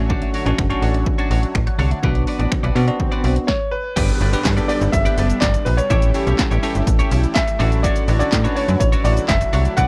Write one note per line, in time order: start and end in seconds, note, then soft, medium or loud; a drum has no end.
0.00 0.22 A1 medium
0.00 2.01 D3 medium
0.00 3.45 F#3 medium
0.00 2.00 A3 medium
0.00 0.34 C#4 medium
0.00 0.35 D4 medium
0.00 0.35 F#4 loud
0.00 2.01 F#4 medium
0.00 2.01 C#5 medium
0.09 0.21 D3 loud
0.09 0.29 D4 medium
0.09 0.29 F#4 medium
0.09 0.30 C#5 medium
0.09 kick loud
0.09 swell medium
0.22 0.33 A3 medium
0.22 closed hi-hat soft
0.34 0.46 D4 medium
0.34 0.45 F#4 medium
0.34 0.45 C#5 medium
0.34 open hi-hat medium
0.46 0.53 A1 medium
0.46 0.66 C#4 medium
0.46 0.57 C#4 medium
0.46 0.66 D4 medium
0.46 0.57 D4 medium
0.46 0.66 F#4 loud
0.46 0.58 F#4 medium
0.46 0.58 C#5 medium
0.46 closed hi-hat medium
0.58 0.73 F#1 loud
0.58 0.69 D3 medium
0.58 finger snap loud
0.58 muted clean electric guitar stroke soft
0.58 kick loud
0.70 1.49 C#4 loud
0.70 1.49 D4 medium
0.70 0.81 D4 soft
0.70 1.49 F#4 loud
0.70 0.82 F#4 medium
0.70 0.83 C#5 medium
0.70 closed hi-hat soft
0.82 1.04 A1 medium
0.82 1.02 D4 medium
0.82 0.94 F#4 medium
0.82 0.93 C#5 medium
0.82 open hi-hat medium
0.94 1.06 D5 medium
0.94 muted clean electric guitar stroke medium
0.94 closed hi-hat medium
1.06 1.18 D3 medium
1.06 muted clean electric guitar stroke soft
1.06 kick loud
1.18 1.29 D4 medium
1.18 1.30 F#4 medium
1.18 1.31 C#5 loud
1.18 closed hi-hat soft
1.30 1.45 A1 medium
1.30 1.46 D4 medium
1.30 1.42 F#4 medium
1.30 1.41 C#5 medium
1.30 open hi-hat medium
1.43 muted clean electric guitar stroke soft
1.43 closed hi-hat medium
1.55 1.70 A1 loud
1.55 finger snap loud
1.55 kick loud
1.67 1.78 F#6 medium
1.67 muted clean electric guitar stroke soft
1.67 closed hi-hat medium
1.79 1.94 C2 medium
1.79 1.90 D3 medium
1.79 1.98 D4 medium
1.79 1.91 F#4 medium
1.79 1.90 C#5 medium
1.79 open hi-hat medium
1.91 2.02 A3 medium
1.91 muted clean electric guitar stroke soft
1.91 closed hi-hat medium
2.03 2.26 B1 loud
2.03 2.14 D3 loud
2.03 2.62 B3 medium
2.03 3.47 B3 medium
2.03 2.62 D4 medium
2.03 3.47 D4 medium
2.03 2.23 F#4 medium
2.03 2.62 F#4 loud
2.03 2.23 B4 medium
2.03 2.23 D5 medium
2.03 kick loud
2.15 2.26 F#3 medium
2.15 closed hi-hat soft
2.27 2.40 F#4 medium
2.27 2.39 B4 medium
2.27 2.38 D5 medium
2.27 open hi-hat medium
2.39 2.47 A1 medium
2.39 2.51 B3 medium
2.39 2.50 F#4 medium
2.39 2.51 B4 medium
2.39 2.51 D5 medium
2.39 closed hi-hat medium
2.52 2.63 D3 medium
2.52 finger snap loud
2.52 kick loud
2.63 2.71 B1 loud
2.63 2.74 F#4 medium
2.63 2.75 B4 medium
2.63 2.76 D5 medium
2.63 closed hi-hat soft
2.75 2.91 B2 loud
2.75 2.86 B3 medium
2.75 2.86 D4 medium
2.75 2.95 F#4 medium
2.75 2.86 F#4 loud
2.75 2.88 B4 medium
2.75 2.87 D5 medium
2.75 open hi-hat medium
2.87 3.48 B3 medium
2.87 3.48 D4 medium
2.87 3.48 F#4 loud
2.87 2.99 D5 medium
2.87 muted clean electric guitar stroke soft
2.87 closed hi-hat medium
3.00 3.11 D3 medium
3.00 muted clean electric guitar stroke soft
3.00 kick loud
3.12 3.22 F#4 medium
3.12 3.23 B4 medium
3.12 3.24 D5 medium
3.12 closed hi-hat soft
3.24 3.39 B1 medium
3.24 3.39 F#4 medium
3.24 3.36 B4 medium
3.24 3.35 D5 medium
3.24 open hi-hat medium
3.36 muted clean electric guitar stroke soft
3.36 closed hi-hat medium
3.47 3.73 C#5 medium
3.47 kick loud
3.47 snare medium
3.71 4.72 B4 loud
3.96 4.12 G1 loud
3.96 7.56 G3 medium
3.96 4.26 B3 medium
3.96 5.88 B3 medium
3.96 5.88 D4 medium
3.96 4.26 D4 medium
3.96 4.16 G4 medium
3.96 4.26 G4 medium
3.96 4.16 B4 medium
3.96 4.27 B4 medium
3.96 4.17 D5 loud
3.96 kick loud
3.96 closed hi-hat medium
3.96 crash loud
3.96 downlifter medium
3.96 shaker medium
4.08 closed hi-hat soft
4.08 shaker soft
4.21 4.36 G1 loud
4.21 4.33 G4 medium
4.21 4.32 B4 medium
4.21 4.31 D5 medium
4.21 open hi-hat medium
4.21 shaker medium
4.33 4.53 B3 medium
4.33 4.53 D4 medium
4.33 4.53 G4 medium
4.33 4.44 G4 medium
4.33 4.53 B4 loud
4.33 4.44 B4 medium
4.33 4.45 D5 medium
4.33 closed hi-hat medium
4.33 shaker medium
4.45 4.60 G2 loud
4.45 muted clean electric guitar stroke soft
4.45 kick loud
4.45 snare medium
4.45 clap loud
4.45 closed hi-hat medium
4.45 shaker medium
4.57 5.36 B3 medium
4.57 5.36 D4 medium
4.57 5.36 G4 medium
4.57 4.68 G4 medium
4.57 5.36 A4 medium
4.57 4.69 B4 medium
4.57 4.69 D5 medium
4.57 closed hi-hat soft
4.57 shaker soft
4.68 4.89 G4 medium
4.68 4.81 B4 medium
4.68 4.94 D5 loud
4.68 4.80 D5 medium
4.68 open hi-hat medium
4.68 shaker medium
4.81 4.89 G1 loud
4.81 muted clean electric guitar stroke soft
4.81 closed hi-hat medium
4.81 shaker medium
4.92 5.08 G1 loud
4.92 5.38 E5 loud
4.92 muted clean electric guitar stroke soft
4.92 kick loud
4.92 closed hi-hat medium
4.92 shaker medium
5.05 5.16 G4 medium
5.05 5.17 B4 medium
5.05 5.18 D5 loud
5.05 closed hi-hat soft
5.05 shaker soft
5.17 5.33 F#1 medium
5.17 5.33 G4 medium
5.17 5.29 B4 medium
5.17 5.28 D5 medium
5.17 open hi-hat medium
5.17 shaker medium
5.30 muted clean electric guitar stroke medium
5.30 closed hi-hat medium
5.30 shaker medium
5.41 5.57 G1 loud
5.41 5.64 D5 loud
5.41 muted clean electric guitar stroke soft
5.41 kick loud
5.41 snare loud
5.41 clap loud
5.41 closed hi-hat medium
5.41 shaker medium
5.54 muted clean electric guitar stroke medium
5.54 closed hi-hat medium
5.54 shaker medium
5.65 5.81 A#1 medium
5.65 5.78 B4 medium
5.65 open hi-hat medium
5.65 shaker medium
5.77 6.71 C#5 loud
5.77 muted clean electric guitar stroke medium
5.77 closed hi-hat medium
5.77 shaker medium
5.90 6.13 A1 loud
5.90 7.58 E3 medium
5.90 9.74 A3 medium
5.90 6.10 C#4 medium
5.90 6.10 E4 medium
5.90 9.74 E4 medium
5.90 6.10 E4 medium
5.90 7.58 G4 medium
5.90 6.10 G4 medium
5.90 6.10 A4 medium
5.90 6.10 C#5 loud
5.90 kick loud
5.90 closed hi-hat medium
5.90 shaker medium
6.02 closed hi-hat soft
6.02 shaker soft
6.14 6.54 C#4 medium
6.14 6.27 E4 medium
6.14 6.54 E4 medium
6.14 6.54 G4 medium
6.14 6.26 G4 medium
6.14 6.54 A4 medium
6.14 6.25 C#5 medium
6.14 open hi-hat medium
6.14 shaker medium
6.27 6.34 B1 loud
6.27 6.37 E4 medium
6.27 6.38 G4 medium
6.27 6.38 C#5 medium
6.27 closed hi-hat medium
6.27 shaker medium
6.39 muted clean electric guitar stroke soft
6.39 kick loud
6.39 snare medium
6.39 clap loud
6.39 closed hi-hat medium
6.39 shaker medium
6.51 6.59 A1 loud
6.51 6.62 E4 medium
6.51 6.62 G4 medium
6.51 6.63 C#5 medium
6.51 closed hi-hat soft
6.51 shaker soft
6.63 7.41 C#4 medium
6.63 6.82 E4 medium
6.63 7.42 E4 medium
6.63 7.42 G4 medium
6.63 6.75 G4 medium
6.63 7.42 A4 loud
6.63 6.74 C#5 medium
6.63 open hi-hat medium
6.63 shaker medium
6.75 6.83 G1 medium
6.75 muted clean electric guitar stroke soft
6.75 closed hi-hat medium
6.75 shaker medium
6.87 7.02 A1 medium
6.87 muted clean electric guitar stroke soft
6.87 kick loud
6.87 closed hi-hat medium
6.87 shaker medium
6.99 7.10 E4 medium
6.99 7.11 G4 medium
6.99 7.11 C#5 loud
6.99 closed hi-hat medium
6.99 shaker soft
7.11 7.26 B1 medium
7.11 7.27 E4 medium
7.11 7.23 G4 medium
7.11 7.22 C#5 medium
7.11 open hi-hat medium
7.11 shaker medium
7.23 muted clean electric guitar stroke medium
7.23 closed hi-hat medium
7.23 shaker medium
7.34 7.85 E5 loud
7.34 kick loud
7.34 snare medium
7.34 clap loud
7.34 closed hi-hat medium
7.34 shaker medium
7.47 muted clean electric guitar stroke soft
7.47 closed hi-hat medium
7.47 shaker medium
7.59 7.89 A1 loud
7.59 9.75 D3 medium
7.59 9.88 F#3 medium
7.59 8.09 C#4 medium
7.59 7.79 D4 loud
7.59 8.09 D4 medium
7.59 9.75 F#4 medium
7.59 8.09 F#4 medium
7.59 7.71 F#4 medium
7.59 8.09 A4 medium
7.59 7.70 C#5 medium
7.59 open hi-hat medium
7.59 shaker medium
7.72 muted clean electric guitar stroke soft
7.72 closed hi-hat medium
7.72 shaker medium
7.83 8.03 D4 medium
7.83 8.04 F#4 medium
7.83 8.04 C#5 loud
7.83 8.17 D5 loud
7.83 kick loud
7.83 closed hi-hat medium
7.83 shaker medium
7.96 closed hi-hat soft
7.96 shaker soft
8.08 8.23 A1 loud
8.08 8.20 D4 medium
8.08 8.20 F#4 medium
8.08 8.19 C#5 medium
8.08 open hi-hat medium
8.08 shaker medium
8.19 8.40 C#4 medium
8.19 8.40 D4 medium
8.19 8.31 D4 medium
8.19 8.40 F#4 medium
8.19 8.32 F#4 medium
8.19 8.40 A4 medium
8.19 8.32 C#5 medium
8.19 8.54 D5 loud
8.19 closed hi-hat medium
8.19 shaker medium
8.32 8.47 A2 loud
8.32 kick loud
8.32 snare medium
8.32 clap loud
8.32 closed hi-hat medium
8.32 shaker medium
8.44 9.23 C#4 medium
8.44 9.23 D4 medium
8.44 8.55 D4 medium
8.44 9.23 F#4 medium
8.44 8.56 F#4 medium
8.44 9.23 B4 medium
8.44 8.57 C#5 medium
8.44 closed hi-hat soft
8.44 shaker medium
8.55 8.76 D4 medium
8.55 8.68 F#4 medium
8.55 8.78 C#5 medium
8.55 8.67 C#5 loud
8.55 open hi-hat medium
8.55 shaker medium
8.68 8.76 F#2 loud
8.68 muted clean electric guitar stroke soft
8.68 closed hi-hat medium
8.68 shaker medium
8.80 8.95 A1 medium
8.80 8.85 C#5 loud
8.80 muted clean electric guitar stroke soft
8.80 kick loud
8.80 closed hi-hat medium
8.80 shaker medium
8.92 9.03 D4 medium
8.92 9.04 F#4 medium
8.92 9.05 C#5 loud
8.92 closed hi-hat soft
8.92 shaker soft
9.04 9.20 A1 loud
9.04 9.20 D4 medium
9.04 9.17 F#4 medium
9.04 9.16 C#5 medium
9.04 9.27 D5 loud
9.04 open hi-hat medium
9.04 shaker medium
9.17 muted clean electric guitar stroke soft
9.17 closed hi-hat medium
9.17 shaker medium
9.28 9.44 F#1 medium
9.28 9.79 E5 loud
9.28 kick loud
9.28 snare loud
9.28 clap loud
9.28 closed hi-hat medium
9.28 shaker medium
9.41 muted clean electric guitar stroke soft
9.41 closed hi-hat medium
9.41 shaker medium
9.53 9.68 C2 medium
9.53 9.72 D4 medium
9.53 9.65 F#4 medium
9.53 9.64 C#5 medium
9.53 open hi-hat medium
9.53 shaker medium
9.65 muted clean electric guitar stroke soft
9.65 closed hi-hat medium
9.65 shaker medium
9.77 9.88 B1 loud
9.77 9.88 B3 medium
9.77 9.88 D4 medium
9.77 9.88 F#4 medium
9.77 9.88 B4 medium
9.77 9.88 D5 loud
9.77 9.88 F#5 loud
9.77 kick loud
9.77 closed hi-hat medium
9.77 shaker medium